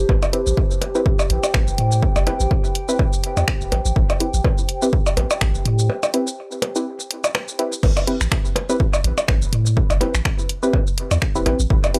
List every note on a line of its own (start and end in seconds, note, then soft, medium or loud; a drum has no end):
0.00 7.83 G4 medium
0.00 7.83 C5 medium
0.00 0.73 A5 medium
0.09 0.17 A1 loud
0.09 kick loud
0.09 percussion blips medium
0.23 open hi-hat soft
0.23 percussion blips medium
0.23 shaker soft
0.33 0.41 C4 medium
0.33 0.41 E4 medium
0.33 0.41 G4 medium
0.33 0.41 B4 medium
0.33 open hi-hat loud
0.47 0.53 A1 medium
0.47 shaker soft
0.57 7.83 G5 medium
0.57 kick loud
0.71 shaker soft
0.82 open hi-hat medium
0.82 percussion blips medium
0.95 1.01 C4 medium
0.95 1.01 E4 medium
0.95 1.01 G4 medium
0.95 1.01 B4 loud
0.95 shaker soft
1.06 kick loud
1.19 percussion blips medium
1.19 shaker soft
1.30 1.38 A1 loud
1.30 open hi-hat medium
1.43 open hi-hat soft
1.43 percussion blips medium
1.43 shaker soft
1.54 1.70 A1 medium
1.54 finger snap loud
1.54 kick loud
1.54 percussion blips medium
1.68 shaker soft
1.78 2.08 A2 medium
1.78 open hi-hat medium
1.92 shaker medium
2.03 kick loud
2.16 2.30 G1 medium
2.16 open hi-hat soft
2.16 percussion blips medium
2.16 shaker soft
2.27 2.39 C4 medium
2.27 2.39 E4 medium
2.27 2.39 G4 medium
2.27 2.39 B4 medium
2.27 open hi-hat medium
2.27 percussion blips medium
2.40 2.47 A1 medium
2.40 shaker medium
2.51 kick loud
2.64 shaker soft
2.75 open hi-hat medium
2.89 2.98 C4 medium
2.89 2.98 E4 medium
2.89 2.98 G4 medium
2.89 2.98 B4 medium
2.89 shaker medium
2.99 kick loud
2.99 percussion blips medium
3.13 shaker soft
3.24 open hi-hat medium
3.37 3.44 E2 loud
3.37 open hi-hat soft
3.37 percussion blips medium
3.37 shaker medium
3.48 finger snap loud
3.48 kick loud
3.61 3.68 E1 loud
3.61 shaker soft
3.72 3.80 A1 loud
3.72 open hi-hat medium
3.72 percussion blips medium
3.85 3.92 A1 loud
3.85 shaker medium
3.96 4.04 A1 loud
3.96 kick loud
4.10 open hi-hat soft
4.10 percussion blips medium
4.10 shaker soft
4.20 4.28 C4 medium
4.20 4.28 E4 medium
4.20 4.28 G4 medium
4.20 4.28 B4 medium
4.20 open hi-hat medium
4.34 4.40 A1 medium
4.34 shaker medium
4.44 kick loud
4.44 percussion blips medium
4.58 shaker soft
4.69 open hi-hat medium
4.82 4.88 C4 medium
4.82 4.88 E4 medium
4.82 4.88 G4 medium
4.82 4.88 B4 loud
4.82 shaker medium
4.93 kick loud
5.06 percussion blips medium
5.06 shaker soft
5.17 5.25 A1 loud
5.17 open hi-hat medium
5.17 percussion blips medium
5.31 open hi-hat soft
5.31 percussion blips medium
5.31 shaker medium
5.41 5.57 A1 loud
5.41 finger snap loud
5.41 kick loud
5.55 shaker soft
5.65 5.90 A2 medium
5.65 open hi-hat medium
5.79 shaker medium
5.90 percussion blips medium
6.03 open hi-hat soft
6.03 percussion blips medium
6.03 shaker soft
6.14 6.26 C4 medium
6.14 6.26 E4 medium
6.14 6.26 G4 medium
6.14 6.26 B4 medium
6.14 open hi-hat medium
6.27 shaker medium
6.52 shaker soft
6.62 open hi-hat medium
6.62 percussion blips medium
6.76 6.85 C4 medium
6.76 6.85 E4 medium
6.76 6.85 G4 medium
6.76 6.85 B4 medium
6.76 shaker medium
7.00 shaker soft
7.11 open hi-hat medium
7.24 open hi-hat soft
7.24 percussion blips loud
7.24 shaker medium
7.35 finger snap loud
7.35 percussion blips medium
7.48 shaker soft
7.59 7.71 C4 medium
7.59 7.71 E4 medium
7.59 7.71 G4 medium
7.59 7.71 B4 medium
7.59 open hi-hat medium
7.73 shaker medium
7.83 7.92 A1 loud
7.83 kick loud
7.83 crash loud
7.83 percussion blips medium
7.97 open hi-hat soft
7.97 percussion blips medium
7.97 shaker soft
8.07 8.15 C4 medium
8.07 8.15 E4 medium
8.07 8.15 G4 medium
8.07 8.15 B4 medium
8.07 open hi-hat loud
8.21 8.27 A1 medium
8.21 finger snap medium
8.21 shaker medium
8.32 finger snap loud
8.32 kick loud
8.45 shaker soft
8.56 open hi-hat medium
8.56 percussion blips medium
8.69 8.75 C4 loud
8.69 8.75 E4 medium
8.69 8.75 G4 medium
8.69 8.75 B4 loud
8.69 shaker medium
8.80 kick loud
8.93 percussion blips loud
8.93 shaker soft
9.04 9.12 A1 loud
9.04 open hi-hat medium
9.18 open hi-hat soft
9.18 percussion blips medium
9.18 shaker medium
9.28 9.44 A1 medium
9.28 finger snap medium
9.28 kick loud
9.28 percussion blips medium
9.42 shaker soft
9.53 9.82 A2 medium
9.53 open hi-hat medium
9.66 shaker medium
9.77 kick loud
9.90 10.04 G1 medium
9.90 open hi-hat soft
9.90 percussion blips medium
9.90 shaker soft
10.01 10.13 C4 medium
10.01 10.13 E4 medium
10.01 10.13 G4 medium
10.01 10.13 B4 medium
10.01 open hi-hat loud
10.01 percussion blips medium
10.15 10.21 A1 medium
10.15 finger snap medium
10.15 shaker medium
10.25 finger snap loud
10.25 kick loud
10.39 shaker soft
10.49 open hi-hat loud
10.63 10.72 C4 medium
10.63 10.72 E4 medium
10.63 10.72 G4 medium
10.63 10.72 B4 medium
10.63 shaker medium
10.73 kick loud
10.73 percussion blips medium
10.87 shaker soft
10.98 open hi-hat medium
11.11 11.18 E2 loud
11.11 open hi-hat soft
11.11 percussion blips medium
11.11 shaker medium
11.22 finger snap medium
11.22 kick loud
11.35 11.42 E1 loud
11.35 11.45 C4 medium
11.35 11.45 E4 medium
11.35 11.45 G4 medium
11.35 11.45 B4 medium
11.35 shaker soft
11.46 11.54 A1 loud
11.46 11.58 C4 medium
11.46 11.58 E4 medium
11.46 11.58 G4 medium
11.46 11.58 B4 medium
11.46 open hi-hat medium
11.46 percussion blips medium
11.60 11.66 A1 loud
11.60 shaker medium
11.70 11.79 A1 loud
11.70 kick loud
11.84 open hi-hat soft
11.84 percussion blips medium
11.84 shaker soft
11.94 11.99 C4 medium
11.94 11.99 E4 medium
11.94 11.99 G4 medium
11.94 11.99 B4 medium
11.94 open hi-hat loud